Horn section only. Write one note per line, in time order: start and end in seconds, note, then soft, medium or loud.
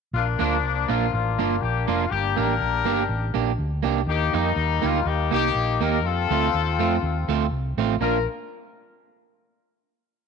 0.15 0.40 A#3 medium
0.15 0.39 D4 medium
0.15 0.26 F4 medium
0.40 1.36 F3 medium
0.40 1.13 A#3 medium
0.40 0.86 D4 medium
0.90 1.12 F4 medium
1.13 2.08 A#3 medium
1.13 2.08 D4 medium
1.13 1.59 F4 medium
1.61 1.88 G4 medium
1.88 2.09 F4 medium
2.11 3.06 A#3 medium
2.11 2.37 D4 medium
2.11 2.37 G4 loud
2.37 3.32 D4 medium
2.37 3.33 G4 medium
2.37 3.36 A#4 loud
4.08 4.34 A#3 medium
4.08 4.35 D#4 medium
4.08 4.33 G4 loud
4.35 5.29 G3 medium
4.35 5.05 A#3 medium
4.35 4.84 D#4 medium
4.85 5.07 F4 medium
5.06 5.32 A#3 medium
5.06 5.32 D#4 medium
5.06 5.33 G4 medium
5.33 6.01 A#3 medium
5.33 6.01 D#4 medium
5.33 5.79 G4 loud
5.84 6.06 A#4 loud
6.04 7.48 C4 medium
6.04 7.48 F4 medium
6.04 7.53 A4 loud
8.01 8.26 A#4 medium